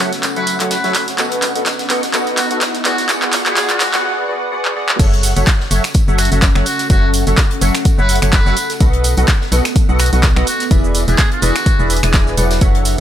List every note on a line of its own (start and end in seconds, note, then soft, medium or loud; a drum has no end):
0.00 0.11 F#3 medium
0.00 1.86 C#4 medium
0.00 0.11 F#4 medium
0.00 0.11 A4 medium
0.00 2.85 A4 medium
0.00 0.11 C#5 medium
0.00 0.11 E5 medium
0.00 1.18 E5 medium
0.00 0.11 F#5 loud
0.00 3.65 F#5 medium
0.00 riser medium
0.13 snare soft
0.13 closed hi-hat medium
0.23 clap medium
0.23 closed hi-hat medium
0.23 tambourine medium
0.36 0.57 F#3 medium
0.36 0.57 F#4 medium
0.36 0.57 A4 medium
0.36 0.56 B4 medium
0.36 0.57 C#5 medium
0.36 0.57 E5 medium
0.36 0.57 F#5 loud
0.36 closed hi-hat soft
0.47 open hi-hat loud
0.47 tambourine medium
0.60 0.77 F#3 medium
0.60 0.77 F#4 medium
0.60 0.77 A4 medium
0.60 0.77 C#5 medium
0.60 0.77 E5 medium
0.60 0.76 F#5 medium
0.60 clap medium
0.60 closed hi-hat soft
0.71 1.08 B4 medium
0.71 snare loud
0.71 closed hi-hat medium
0.71 tambourine medium
0.84 0.94 F#3 loud
0.84 0.94 F#4 medium
0.84 0.94 A4 medium
0.84 0.94 C#5 medium
0.84 0.94 E5 medium
0.84 0.94 F#5 loud
0.84 snare medium
0.84 closed hi-hat soft
0.95 clap medium
0.95 open hi-hat loud
0.95 tambourine medium
1.08 snare soft
1.08 closed hi-hat medium
1.18 1.52 B3 medium
1.18 4.04 B3 medium
1.18 1.52 F#4 medium
1.18 1.52 A4 medium
1.18 1.52 B4 medium
1.18 1.52 D#5 medium
1.18 1.52 F#5 medium
1.18 clap medium
1.18 closed hi-hat medium
1.18 tambourine medium
1.32 closed hi-hat soft
1.36 2.85 D#5 medium
1.42 clap medium
1.42 open hi-hat loud
1.42 tambourine medium
1.55 1.65 B3 medium
1.55 1.65 F#4 medium
1.55 1.65 A4 medium
1.55 1.65 B4 medium
1.55 1.65 D#5 medium
1.55 1.65 F#5 medium
1.55 closed hi-hat medium
1.66 snare loud
1.66 clap medium
1.66 closed hi-hat medium
1.66 tambourine medium
1.79 snare soft
1.79 closed hi-hat soft
1.90 2.02 B3 medium
1.90 2.02 F#4 medium
1.90 2.02 A4 medium
1.90 2.02 B4 medium
1.90 2.02 D#5 medium
1.90 2.02 F#5 loud
1.90 clap medium
1.90 open hi-hat loud
1.90 tambourine medium
2.03 snare soft
2.03 closed hi-hat medium
2.14 2.48 B3 medium
2.14 2.48 F#4 medium
2.14 2.48 A4 medium
2.14 2.48 B4 medium
2.14 2.48 D#5 medium
2.14 2.48 F#5 medium
2.14 clap medium
2.14 closed hi-hat medium
2.14 tambourine medium
2.27 closed hi-hat soft
2.37 2.46 F#4 medium
2.37 clap medium
2.37 open hi-hat loud
2.37 tambourine medium
2.51 2.60 B3 medium
2.51 2.60 F#4 medium
2.51 2.58 F#4 medium
2.51 2.60 A4 medium
2.51 2.60 B4 medium
2.51 2.60 D#5 medium
2.51 2.60 F#5 medium
2.51 closed hi-hat medium
2.61 snare loud
2.61 clap medium
2.61 closed hi-hat medium
2.61 tambourine medium
2.74 snare soft
2.74 closed hi-hat soft
2.85 2.97 B3 medium
2.85 2.97 F#4 medium
2.85 3.05 F#4 medium
2.85 2.97 G#4 medium
2.85 2.97 B4 medium
2.85 2.97 D5 medium
2.85 2.97 F#5 loud
2.85 clap medium
2.85 open hi-hat loud
2.85 tambourine medium
2.98 snare soft
2.98 closed hi-hat medium
3.09 3.43 B3 medium
3.09 3.43 F#4 medium
3.09 3.43 G#4 medium
3.09 3.43 B4 medium
3.09 3.43 D5 medium
3.09 3.43 F#5 medium
3.09 clap medium
3.09 closed hi-hat medium
3.09 tambourine medium
3.22 clap medium
3.22 closed hi-hat soft
3.33 clap medium
3.33 open hi-hat loud
3.33 tambourine medium
3.46 3.55 B3 medium
3.46 3.55 F#4 medium
3.46 3.55 G#4 medium
3.46 3.65 G#4 medium
3.46 3.55 B4 medium
3.46 3.55 D5 medium
3.46 3.55 F#5 medium
3.46 clap medium
3.46 closed hi-hat soft
3.56 3.91 B3 medium
3.56 3.91 F#4 medium
3.56 3.90 G#4 medium
3.56 3.91 B4 medium
3.56 3.91 D5 medium
3.56 3.91 F#5 medium
3.56 snare loud
3.56 clap medium
3.56 closed hi-hat medium
3.56 tambourine medium
3.69 4.04 F#4 medium
3.69 clap medium
3.69 closed hi-hat soft
3.80 clap loud
3.80 open hi-hat loud
3.80 tambourine medium
3.94 4.03 B3 medium
3.94 4.03 F#4 medium
3.94 4.03 G#4 medium
3.94 4.03 B4 medium
3.94 4.03 D5 medium
3.94 4.03 F#5 medium
3.94 snare soft
3.94 clap medium
3.94 closed hi-hat medium
4.04 4.26 B3 medium
4.04 4.26 F#4 medium
4.04 4.26 G#4 medium
4.04 4.26 B4 medium
4.04 4.26 D5 medium
4.04 4.26 F#5 medium
4.28 4.50 B3 medium
4.28 4.50 F#4 medium
4.28 4.50 G#4 medium
4.28 4.50 B4 medium
4.28 4.50 D5 medium
4.28 4.50 F#5 medium
4.52 4.74 B3 medium
4.52 4.74 F#4 medium
4.52 4.74 G#4 medium
4.52 4.74 B4 medium
4.52 4.74 D5 medium
4.52 4.74 F#5 medium
4.65 clap medium
4.76 4.98 B3 medium
4.76 4.98 F#4 medium
4.76 4.98 G#4 medium
4.76 4.98 B4 medium
4.76 4.98 D5 medium
4.76 4.98 F#5 medium
4.89 clap loud
4.99 5.34 F#1 loud
4.99 5.33 F#3 medium
4.99 9.48 C#4 medium
4.99 5.33 F#4 medium
4.99 5.33 A4 medium
4.99 5.33 C#5 medium
4.99 5.33 E5 medium
4.99 5.33 F#5 medium
4.99 kick loud
4.99 closed hi-hat medium
4.99 crash loud
4.99 tambourine medium
4.99 tambourine soft
4.99 shaker soft
5.06 10.47 A4 medium
5.13 closed hi-hat soft
5.23 open hi-hat loud
5.23 tambourine medium
5.23 shaker medium
5.33 5.44 F#1 loud
5.33 5.46 F#3 medium
5.33 5.46 F#4 medium
5.33 5.46 A4 medium
5.33 5.46 C#5 medium
5.33 5.46 E5 medium
5.33 11.34 F#5 medium
5.33 5.46 F#5 medium
5.33 closed hi-hat medium
5.33 tambourine medium
5.33 shaker soft
5.47 kick loud
5.47 snare loud
5.47 clap loud
5.47 closed hi-hat medium
5.47 tambourine medium
5.47 shaker soft
5.60 snare soft
5.71 5.80 F#1 loud
5.71 5.83 F#3 loud
5.71 5.83 F#4 medium
5.71 5.83 A4 medium
5.71 5.83 C#5 medium
5.71 5.83 E5 medium
5.71 5.83 F#5 loud
5.71 open hi-hat loud
5.71 tambourine medium
5.71 shaker medium
5.84 finger snap medium
5.84 snare soft
5.84 closed hi-hat medium
5.84 tambourine medium
5.84 shaker soft
5.94 kick loud
5.94 closed hi-hat medium
5.94 tambourine medium
5.94 shaker soft
6.08 6.29 F#1 loud
6.08 6.29 F#3 medium
6.08 6.29 F#4 medium
6.08 6.29 A4 medium
6.08 6.29 C#5 medium
6.08 6.29 E5 medium
6.08 6.29 F#5 loud
6.08 shaker soft
6.18 6.27 F#4 medium
6.18 finger snap medium
6.18 open hi-hat loud
6.18 tambourine medium
6.18 shaker medium
6.25 closed hi-hat medium
6.32 6.53 F#1 loud
6.32 6.48 F#3 medium
6.32 6.48 F#4 medium
6.32 6.39 F#4 medium
6.32 6.48 A4 medium
6.32 6.48 C#5 medium
6.32 6.48 E5 medium
6.32 6.48 F#5 medium
6.32 closed hi-hat medium
6.32 tambourine soft
6.32 shaker soft
6.42 kick loud
6.42 snare loud
6.42 clap loud
6.42 closed hi-hat medium
6.42 tambourine medium
6.42 tambourine soft
6.42 shaker soft
6.55 6.63 F#1 loud
6.55 6.65 F#3 loud
6.55 6.65 F#4 medium
6.55 6.65 A4 medium
6.55 6.65 C#5 medium
6.55 6.65 E5 medium
6.55 6.65 F#5 loud
6.55 finger snap medium
6.55 snare soft
6.55 shaker soft
6.66 6.86 F#4 medium
6.66 open hi-hat loud
6.66 tambourine medium
6.66 shaker medium
6.79 snare soft
6.79 closed hi-hat medium
6.79 tambourine medium
6.79 shaker soft
6.90 7.24 F#1 loud
6.90 7.24 F#3 medium
6.90 7.24 F#4 medium
6.90 7.10 F#4 medium
6.90 7.24 A4 medium
6.90 7.24 C#5 medium
6.90 7.24 E5 medium
6.90 7.24 F#5 medium
6.90 kick loud
6.90 closed hi-hat medium
6.90 tambourine medium
6.90 shaker soft
7.13 open hi-hat loud
7.13 tambourine medium
7.13 shaker medium
7.27 7.34 F#1 loud
7.27 7.37 F#3 medium
7.27 7.37 F#4 medium
7.27 7.37 A4 medium
7.27 7.37 C#5 medium
7.27 7.37 E5 medium
7.27 7.37 F#5 medium
7.27 closed hi-hat medium
7.27 tambourine medium
7.27 shaker soft
7.38 kick loud
7.38 snare loud
7.38 clap loud
7.38 closed hi-hat medium
7.38 tambourine medium
7.38 tambourine soft
7.38 shaker soft
7.51 closed hi-hat soft
7.61 7.71 F#1 loud
7.61 7.73 F#3 loud
7.61 7.73 F#4 medium
7.61 7.73 A4 medium
7.61 7.73 C#5 medium
7.61 7.73 E5 medium
7.61 7.73 F#5 loud
7.61 open hi-hat loud
7.61 tambourine medium
7.61 shaker medium
7.75 finger snap medium
7.75 snare soft
7.75 closed hi-hat medium
7.75 tambourine soft
7.75 shaker soft
7.85 kick loud
7.85 closed hi-hat medium
7.85 tambourine medium
7.85 tambourine soft
7.85 shaker soft
7.98 8.20 F#1 loud
7.98 8.19 F#3 medium
7.98 8.19 F#4 medium
7.98 8.19 A4 medium
7.98 8.18 B4 loud
7.98 8.19 C#5 medium
7.98 8.19 E5 medium
7.98 8.19 F#5 loud
7.98 shaker soft
8.09 open hi-hat loud
8.09 tambourine medium
8.09 shaker medium
8.16 closed hi-hat medium
8.22 8.43 F#1 loud
8.22 8.39 F#3 medium
8.22 8.39 F#4 medium
8.22 8.39 A4 medium
8.22 8.39 C#5 medium
8.22 8.39 E5 medium
8.22 8.39 F#5 medium
8.22 finger snap medium
8.22 closed hi-hat soft
8.22 closed hi-hat medium
8.22 tambourine medium
8.22 shaker soft
8.32 8.70 B4 medium
8.32 kick loud
8.32 snare loud
8.32 clap loud
8.32 closed hi-hat medium
8.32 tambourine medium
8.32 shaker soft
8.46 8.53 F#1 loud
8.46 8.56 F#3 loud
8.46 8.56 F#4 medium
8.46 8.55 A4 medium
8.46 8.55 C#5 medium
8.46 8.56 E5 medium
8.46 8.56 F#5 loud
8.46 snare medium
8.46 shaker soft
8.57 open hi-hat loud
8.57 tambourine medium
8.57 shaker medium
8.70 snare soft
8.70 closed hi-hat medium
8.70 tambourine medium
8.70 shaker soft
8.80 9.15 B1 medium
8.80 9.14 B3 medium
8.80 11.34 B3 medium
8.80 9.14 F#4 medium
8.80 9.14 A4 medium
8.80 9.14 B4 medium
8.80 9.14 D#5 medium
8.80 9.14 F#5 medium
8.80 kick loud
8.80 closed hi-hat medium
8.80 tambourine soft
8.80 tambourine medium
8.80 shaker soft
8.93 closed hi-hat soft
9.04 open hi-hat loud
9.04 tambourine medium
9.04 shaker medium
9.17 9.25 B1 loud
9.17 9.27 B3 medium
9.17 9.27 F#4 medium
9.17 9.27 A4 medium
9.17 9.27 B4 medium
9.17 9.27 D#5 medium
9.17 9.27 F#5 medium
9.17 closed hi-hat soft
9.17 tambourine medium
9.17 shaker soft
9.28 kick loud
9.28 snare loud
9.28 clap loud
9.28 closed hi-hat medium
9.28 tambourine medium
9.28 tambourine soft
9.28 shaker soft
9.41 snare medium
9.46 10.47 D#5 medium
9.52 9.61 B1 loud
9.52 9.64 B3 loud
9.52 9.64 F#4 medium
9.52 9.64 A4 medium
9.52 9.64 B4 medium
9.52 9.64 D#5 medium
9.52 9.64 F#5 loud
9.52 open hi-hat loud
9.52 tambourine medium
9.52 tambourine loud
9.52 shaker medium
9.65 finger snap medium
9.65 snare soft
9.65 closed hi-hat medium
9.65 tambourine medium
9.65 shaker soft
9.76 kick loud
9.76 closed hi-hat medium
9.76 tambourine medium
9.76 tambourine soft
9.76 shaker soft
9.89 10.10 B1 loud
9.89 10.10 B3 medium
9.89 10.10 F#4 medium
9.89 10.10 A4 medium
9.89 10.10 B4 medium
9.89 10.10 D#5 medium
9.89 10.10 F#5 loud
9.89 shaker soft
9.99 10.08 F#4 medium
9.99 finger snap medium
9.99 open hi-hat loud
9.99 tambourine medium
9.99 shaker medium
10.06 closed hi-hat medium
10.13 10.34 B1 loud
10.13 10.29 B3 medium
10.13 10.29 F#4 medium
10.13 10.20 F#4 medium
10.13 10.29 A4 medium
10.13 10.29 B4 medium
10.13 10.29 D#5 medium
10.13 10.29 F#5 medium
10.13 closed hi-hat medium
10.13 tambourine medium
10.13 shaker soft
10.23 kick loud
10.23 snare loud
10.23 clap loud
10.23 closed hi-hat medium
10.23 tambourine medium
10.23 tambourine soft
10.23 shaker soft
10.36 10.44 B1 loud
10.36 10.46 F#4 loud
10.36 10.46 A4 medium
10.36 10.46 B4 medium
10.36 10.46 D#5 medium
10.36 10.46 F#5 loud
10.36 finger snap medium
10.36 snare soft
10.36 shaker soft
10.47 12.62 D4 medium
10.47 10.67 F#4 medium
10.47 open hi-hat loud
10.47 tambourine medium
10.47 tambourine loud
10.47 shaker medium
10.60 12.62 G#5 medium
10.60 snare soft
10.60 closed hi-hat medium
10.60 tambourine medium
10.60 shaker soft
10.71 11.05 E1 medium
10.71 11.05 E3 medium
10.71 11.05 E4 medium
10.71 11.05 G#4 medium
10.71 11.05 B4 medium
10.71 11.05 D5 medium
10.71 11.05 E5 medium
10.71 kick loud
10.71 closed hi-hat medium
10.71 tambourine medium
10.71 shaker soft
10.75 13.00 E5 medium
10.84 shaker soft
10.89 13.00 B4 medium
10.95 open hi-hat loud
10.95 tambourine medium
10.95 shaker medium
11.08 11.15 E1 loud
11.08 11.17 E3 medium
11.08 11.17 E4 medium
11.08 11.17 G#4 medium
11.08 11.27 G#4 medium
11.08 11.17 B4 medium
11.08 11.17 D5 medium
11.08 11.17 E5 medium
11.08 closed hi-hat soft
11.08 tambourine medium
11.08 shaker soft
11.18 kick loud
11.18 snare loud
11.18 clap loud
11.18 closed hi-hat medium
11.18 tambourine medium
11.18 tambourine soft
11.18 shaker soft
11.32 11.98 F#4 medium
11.32 closed hi-hat soft
11.42 11.51 E1 loud
11.42 11.54 E3 loud
11.42 11.54 E4 medium
11.42 11.54 G#4 medium
11.42 11.54 B4 medium
11.42 11.54 D5 medium
11.42 11.54 E5 loud
11.42 open hi-hat loud
11.42 tambourine loud
11.42 tambourine medium
11.42 shaker medium
11.56 finger snap medium
11.56 snare soft
11.56 closed hi-hat medium
11.56 tambourine medium
11.56 shaker soft
11.66 kick loud
11.66 closed hi-hat medium
11.66 tambourine medium
11.66 shaker soft
11.79 12.01 E1 medium
11.79 12.00 E3 medium
11.79 12.00 E4 medium
11.79 12.00 G#4 medium
11.79 12.00 B4 medium
11.79 12.00 D5 medium
11.79 12.00 E5 loud
11.79 shaker soft
11.90 open hi-hat loud
11.90 tambourine medium
11.90 tambourine loud
11.90 shaker medium
11.97 closed hi-hat medium
12.03 12.35 E1 loud
12.03 12.35 E3 medium
12.03 12.35 E4 medium
12.03 12.35 G#4 medium
12.03 12.35 B4 medium
12.03 12.35 D5 medium
12.03 12.35 G#5 loud
12.03 finger snap medium
12.03 closed hi-hat soft
12.03 tambourine soft
12.03 shaker soft
12.14 kick loud
12.14 snare loud
12.14 clap loud
12.14 closed hi-hat medium
12.14 tambourine medium
12.14 shaker soft
12.27 snare soft
12.27 shaker soft
12.37 12.59 E1 loud
12.37 12.59 F#3 medium
12.37 12.59 E4 medium
12.37 12.59 G#4 medium
12.37 12.59 B4 medium
12.37 12.59 D5 medium
12.37 12.59 F#5 medium
12.37 open hi-hat loud
12.37 tambourine medium
12.37 tambourine loud
12.37 shaker medium
12.50 snare loud
12.50 closed hi-hat medium
12.50 tambourine medium
12.50 shaker soft
12.61 12.96 F#1 medium
12.61 12.95 F#3 medium
12.61 12.95 F#4 medium
12.61 13.00 F#4 medium
12.61 12.95 A4 medium
12.61 12.95 C#5 medium
12.61 12.95 E5 medium
12.61 12.95 F#5 medium
12.61 kick loud
12.61 closed hi-hat medium
12.61 tambourine medium
12.61 tambourine soft
12.61 shaker soft
12.75 13.00 C#5 medium
12.75 closed hi-hat soft
12.85 open hi-hat loud
12.85 tambourine medium
12.85 shaker medium